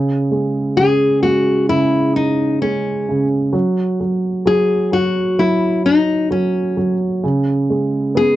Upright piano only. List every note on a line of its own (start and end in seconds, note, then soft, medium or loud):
0.00 0.76 C#3 medium
0.31 1.22 G#3 soft
0.77 1.67 C#3 soft
1.24 2.61 G#3 soft
1.69 3.07 C#3 soft
2.62 3.52 G#3 soft
3.09 3.53 C#3 soft
3.53 3.99 F#3 soft
4.00 4.44 F#3 soft
4.46 4.90 F#3 soft
4.92 5.37 F#3 soft
5.39 6.29 F#3 soft
6.31 6.75 F#3 soft
6.77 7.22 F#3 soft
7.23 8.36 C#3 medium
7.70 8.36 G#3 soft
8.15 8.36 B3 soft